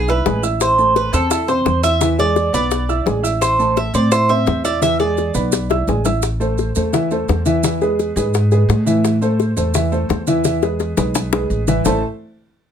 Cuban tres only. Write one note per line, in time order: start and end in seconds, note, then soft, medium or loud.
0.10 0.41 B4 loud
0.62 0.94 C5 medium
0.96 1.14 B4 medium
1.14 1.50 A4 loud
1.48 1.81 C5 medium
1.83 2.19 E5 loud
2.19 2.53 D5 loud
2.54 3.20 D5 loud
3.41 3.78 C5 medium
3.77 3.94 E5 loud
3.95 4.12 D5 medium
4.12 4.30 C5 medium
4.29 4.62 E5 loud
4.65 4.81 D5 medium
4.82 4.99 E5 medium
5.00 6.01 D5 medium